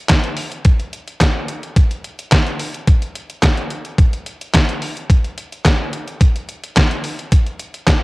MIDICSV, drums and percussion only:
0, 0, Header, 1, 2, 480
1, 0, Start_track
1, 0, Tempo, 555556
1, 566, Time_signature, 4, 2, 24, 8
1, 6941, End_track
2, 0, Start_track
2, 0, Title_t, "Drums"
2, 77, Note_on_c, 9, 39, 88
2, 80, Note_on_c, 9, 42, 92
2, 84, Note_on_c, 9, 36, 102
2, 84, Note_on_c, 9, 38, 112
2, 164, Note_off_c, 9, 39, 0
2, 167, Note_off_c, 9, 42, 0
2, 171, Note_off_c, 9, 36, 0
2, 171, Note_off_c, 9, 38, 0
2, 205, Note_on_c, 9, 42, 38
2, 291, Note_off_c, 9, 42, 0
2, 318, Note_on_c, 9, 46, 79
2, 404, Note_off_c, 9, 46, 0
2, 447, Note_on_c, 9, 42, 53
2, 533, Note_off_c, 9, 42, 0
2, 560, Note_on_c, 9, 42, 86
2, 563, Note_on_c, 9, 36, 127
2, 646, Note_off_c, 9, 42, 0
2, 649, Note_off_c, 9, 36, 0
2, 688, Note_on_c, 9, 42, 31
2, 774, Note_off_c, 9, 42, 0
2, 804, Note_on_c, 9, 42, 65
2, 890, Note_off_c, 9, 42, 0
2, 929, Note_on_c, 9, 42, 52
2, 1016, Note_off_c, 9, 42, 0
2, 1042, Note_on_c, 9, 39, 85
2, 1043, Note_on_c, 9, 36, 113
2, 1046, Note_on_c, 9, 42, 100
2, 1049, Note_on_c, 9, 38, 113
2, 1129, Note_off_c, 9, 39, 0
2, 1130, Note_off_c, 9, 36, 0
2, 1133, Note_off_c, 9, 42, 0
2, 1135, Note_off_c, 9, 38, 0
2, 1282, Note_on_c, 9, 42, 73
2, 1368, Note_off_c, 9, 42, 0
2, 1409, Note_on_c, 9, 42, 50
2, 1496, Note_off_c, 9, 42, 0
2, 1523, Note_on_c, 9, 36, 118
2, 1523, Note_on_c, 9, 42, 85
2, 1609, Note_off_c, 9, 42, 0
2, 1610, Note_off_c, 9, 36, 0
2, 1649, Note_on_c, 9, 42, 38
2, 1736, Note_off_c, 9, 42, 0
2, 1766, Note_on_c, 9, 42, 62
2, 1852, Note_off_c, 9, 42, 0
2, 1891, Note_on_c, 9, 42, 65
2, 1978, Note_off_c, 9, 42, 0
2, 2001, Note_on_c, 9, 39, 92
2, 2004, Note_on_c, 9, 42, 93
2, 2006, Note_on_c, 9, 36, 100
2, 2008, Note_on_c, 9, 38, 112
2, 2088, Note_off_c, 9, 39, 0
2, 2091, Note_off_c, 9, 42, 0
2, 2092, Note_off_c, 9, 36, 0
2, 2095, Note_off_c, 9, 38, 0
2, 2130, Note_on_c, 9, 42, 40
2, 2217, Note_off_c, 9, 42, 0
2, 2242, Note_on_c, 9, 46, 80
2, 2328, Note_off_c, 9, 46, 0
2, 2370, Note_on_c, 9, 42, 57
2, 2456, Note_off_c, 9, 42, 0
2, 2483, Note_on_c, 9, 42, 82
2, 2484, Note_on_c, 9, 36, 118
2, 2569, Note_off_c, 9, 42, 0
2, 2570, Note_off_c, 9, 36, 0
2, 2609, Note_on_c, 9, 42, 35
2, 2696, Note_off_c, 9, 42, 0
2, 2725, Note_on_c, 9, 42, 74
2, 2811, Note_off_c, 9, 42, 0
2, 2849, Note_on_c, 9, 42, 53
2, 2935, Note_off_c, 9, 42, 0
2, 2960, Note_on_c, 9, 39, 87
2, 2962, Note_on_c, 9, 36, 111
2, 2965, Note_on_c, 9, 42, 99
2, 2967, Note_on_c, 9, 38, 122
2, 3047, Note_off_c, 9, 39, 0
2, 3049, Note_off_c, 9, 36, 0
2, 3051, Note_off_c, 9, 42, 0
2, 3054, Note_off_c, 9, 38, 0
2, 3087, Note_on_c, 9, 42, 33
2, 3174, Note_off_c, 9, 42, 0
2, 3200, Note_on_c, 9, 42, 65
2, 3286, Note_off_c, 9, 42, 0
2, 3325, Note_on_c, 9, 42, 46
2, 3411, Note_off_c, 9, 42, 0
2, 3441, Note_on_c, 9, 36, 124
2, 3442, Note_on_c, 9, 42, 81
2, 3528, Note_off_c, 9, 36, 0
2, 3528, Note_off_c, 9, 42, 0
2, 3569, Note_on_c, 9, 42, 40
2, 3655, Note_off_c, 9, 42, 0
2, 3683, Note_on_c, 9, 42, 64
2, 3769, Note_off_c, 9, 42, 0
2, 3813, Note_on_c, 9, 42, 62
2, 3899, Note_off_c, 9, 42, 0
2, 3924, Note_on_c, 9, 39, 87
2, 3925, Note_on_c, 9, 36, 105
2, 3926, Note_on_c, 9, 42, 94
2, 3930, Note_on_c, 9, 38, 115
2, 4010, Note_off_c, 9, 39, 0
2, 4011, Note_off_c, 9, 36, 0
2, 4013, Note_off_c, 9, 42, 0
2, 4017, Note_off_c, 9, 38, 0
2, 4052, Note_on_c, 9, 42, 39
2, 4138, Note_off_c, 9, 42, 0
2, 4164, Note_on_c, 9, 46, 69
2, 4250, Note_off_c, 9, 46, 0
2, 4292, Note_on_c, 9, 42, 50
2, 4379, Note_off_c, 9, 42, 0
2, 4404, Note_on_c, 9, 36, 123
2, 4407, Note_on_c, 9, 42, 92
2, 4490, Note_off_c, 9, 36, 0
2, 4494, Note_off_c, 9, 42, 0
2, 4531, Note_on_c, 9, 42, 31
2, 4617, Note_off_c, 9, 42, 0
2, 4645, Note_on_c, 9, 42, 74
2, 4732, Note_off_c, 9, 42, 0
2, 4772, Note_on_c, 9, 42, 47
2, 4859, Note_off_c, 9, 42, 0
2, 4883, Note_on_c, 9, 36, 113
2, 4883, Note_on_c, 9, 39, 83
2, 4887, Note_on_c, 9, 42, 86
2, 4890, Note_on_c, 9, 38, 115
2, 4969, Note_off_c, 9, 36, 0
2, 4969, Note_off_c, 9, 39, 0
2, 4974, Note_off_c, 9, 42, 0
2, 4976, Note_off_c, 9, 38, 0
2, 5123, Note_on_c, 9, 42, 73
2, 5210, Note_off_c, 9, 42, 0
2, 5249, Note_on_c, 9, 42, 46
2, 5335, Note_off_c, 9, 42, 0
2, 5363, Note_on_c, 9, 36, 114
2, 5364, Note_on_c, 9, 42, 86
2, 5449, Note_off_c, 9, 36, 0
2, 5450, Note_off_c, 9, 42, 0
2, 5492, Note_on_c, 9, 42, 35
2, 5578, Note_off_c, 9, 42, 0
2, 5604, Note_on_c, 9, 42, 63
2, 5690, Note_off_c, 9, 42, 0
2, 5733, Note_on_c, 9, 42, 65
2, 5819, Note_off_c, 9, 42, 0
2, 5844, Note_on_c, 9, 39, 86
2, 5846, Note_on_c, 9, 36, 104
2, 5847, Note_on_c, 9, 42, 92
2, 5851, Note_on_c, 9, 38, 113
2, 5930, Note_off_c, 9, 39, 0
2, 5932, Note_off_c, 9, 36, 0
2, 5933, Note_off_c, 9, 42, 0
2, 5937, Note_off_c, 9, 38, 0
2, 5970, Note_on_c, 9, 42, 36
2, 6056, Note_off_c, 9, 42, 0
2, 6080, Note_on_c, 9, 46, 71
2, 6167, Note_off_c, 9, 46, 0
2, 6211, Note_on_c, 9, 42, 50
2, 6298, Note_off_c, 9, 42, 0
2, 6324, Note_on_c, 9, 36, 108
2, 6324, Note_on_c, 9, 42, 94
2, 6410, Note_off_c, 9, 36, 0
2, 6410, Note_off_c, 9, 42, 0
2, 6449, Note_on_c, 9, 42, 34
2, 6535, Note_off_c, 9, 42, 0
2, 6562, Note_on_c, 9, 42, 69
2, 6648, Note_off_c, 9, 42, 0
2, 6688, Note_on_c, 9, 42, 51
2, 6775, Note_off_c, 9, 42, 0
2, 6801, Note_on_c, 9, 39, 85
2, 6802, Note_on_c, 9, 36, 112
2, 6806, Note_on_c, 9, 42, 88
2, 6808, Note_on_c, 9, 38, 108
2, 6888, Note_off_c, 9, 39, 0
2, 6889, Note_off_c, 9, 36, 0
2, 6892, Note_off_c, 9, 42, 0
2, 6895, Note_off_c, 9, 38, 0
2, 6941, End_track
0, 0, End_of_file